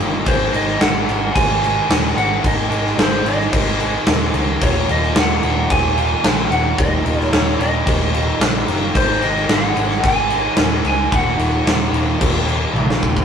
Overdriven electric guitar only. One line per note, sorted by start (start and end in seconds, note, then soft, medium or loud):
0.00 0.23 D#2 medium
0.00 0.23 A#2 medium
0.00 0.23 D#3 loud
0.24 0.51 G#2 medium
0.24 0.50 D#3 loud
0.24 0.51 G#3 loud
0.51 0.78 G#2 medium
0.51 0.78 D#3 medium
0.51 0.79 G#3 loud
0.79 1.05 G#2 medium
0.79 1.04 D#3 medium
0.79 1.06 G#3 loud
1.05 1.31 G#2 medium
1.05 1.31 D#3 loud
1.05 1.31 G#3 loud
1.32 1.58 G#2 loud
1.32 1.59 D#3 loud
1.32 1.59 G#3 loud
1.60 1.85 G#2 loud
1.60 1.85 D#3 loud
1.60 1.86 G#3 loud
1.86 2.13 G#2 medium
1.86 2.13 D#3 medium
1.86 2.14 G#3 medium
2.14 2.40 G#2 medium
2.14 2.40 D#3 loud
2.14 2.41 G#3 medium
2.41 2.67 G#2 medium
2.41 2.68 D#3 loud
2.41 2.68 G#3 loud
2.68 2.96 G#2 medium
2.68 2.96 D#3 loud
2.68 2.97 G#3 medium
2.97 3.22 G#2 medium
2.97 3.23 D#3 medium
2.97 3.23 G#3 loud
3.24 3.50 G#2 medium
3.24 3.50 D#3 loud
3.24 3.50 G#3 loud
3.51 3.78 G#2 medium
3.51 3.78 D#3 loud
3.51 3.79 G#3 loud
3.79 4.05 G#2 medium
3.79 4.05 D#3 medium
3.79 4.06 G#3 medium
4.06 4.33 G#2 loud
4.06 4.33 D#3 medium
4.06 4.34 G#3 loud
4.34 4.60 G#2 medium
4.34 4.60 D#3 medium
4.34 4.60 G#3 medium
4.60 4.87 D#2 medium
4.60 4.87 A#2 medium
4.60 4.88 D#3 loud
4.87 5.15 D#2 medium
4.87 5.15 A#2 medium
4.87 5.16 D#3 medium
5.16 5.43 D#2 medium
5.16 5.43 A#2 medium
5.16 5.44 D#3 medium
5.43 5.70 D#2 medium
5.43 5.69 A#2 loud
5.43 5.70 D#3 loud
5.71 5.95 D#2 medium
5.71 5.96 A#2 loud
5.71 5.96 D#3 loud
5.97 6.23 D#2 medium
5.97 6.23 A#2 medium
5.97 6.24 D#3 medium
6.24 6.50 D#2 medium
6.24 6.50 A#2 loud
6.24 6.51 D#3 loud
6.51 6.77 D#2 medium
6.51 6.78 A#2 medium
6.51 6.78 D#3 medium
6.78 7.03 D#2 medium
6.78 7.03 A#2 medium
6.78 7.04 D#3 loud
7.04 7.30 D#2 medium
7.04 7.31 A#2 medium
7.04 7.30 D#3 medium
7.31 7.58 D#2 medium
7.31 7.58 A#2 medium
7.31 7.58 D#3 loud
7.59 7.84 D#2 medium
7.59 7.84 A#2 medium
7.59 7.85 D#3 loud
7.85 8.11 D#2 loud
7.85 8.12 A#2 loud
7.85 8.12 D#3 loud
8.13 8.38 D#2 medium
8.13 8.39 A#2 loud
8.13 8.39 D#3 loud
8.39 8.64 D#2 medium
8.39 8.64 A#2 loud
8.39 8.65 D#3 loud
8.65 8.93 D#2 medium
8.65 8.92 A#2 medium
8.65 8.92 D#3 loud
8.92 9.19 G#2 medium
8.92 9.20 D#3 loud
8.92 9.20 G#3 loud
9.20 9.46 G#2 medium
9.20 9.46 D#3 medium
9.20 9.47 G#3 medium
9.47 9.73 G#2 medium
9.47 9.74 D#3 loud
9.47 9.73 G#3 medium
9.74 10.01 G#2 medium
9.74 10.01 D#3 loud
9.74 10.02 G#3 loud
10.02 10.28 G#2 loud
10.02 10.29 D#3 loud
10.02 10.29 G#3 loud
10.29 10.56 G#2 medium
10.29 10.57 D#3 medium
10.29 10.57 G#3 loud
10.57 10.83 G#2 medium
10.57 10.83 D#3 loud
10.57 10.83 G#3 loud
10.84 11.09 G#2 medium
10.84 11.09 D#3 medium
10.84 11.11 G#3 loud
11.09 11.36 D#2 loud
11.09 11.37 A#2 loud
11.09 11.37 D#3 loud
11.37 11.63 D#2 medium
11.37 11.64 A#2 medium
11.37 11.64 D#3 medium
11.64 11.91 D#2 medium
11.64 11.91 A#2 medium
11.64 11.91 D#3 medium
11.92 12.18 D#2 medium
11.92 12.18 A#2 medium
11.92 12.18 D#3 loud
12.19 12.45 D#2 medium
12.19 12.46 A#2 loud
12.19 12.46 D#3 loud
12.46 12.73 D#2 medium
12.46 12.74 A#2 medium
12.46 12.74 D#3 medium
12.75 13.01 D#2 medium
12.75 13.01 A#2 medium
12.75 13.02 D#3 loud
13.02 13.25 D#2 medium
13.02 13.25 A#2 medium
13.02 13.25 D#3 loud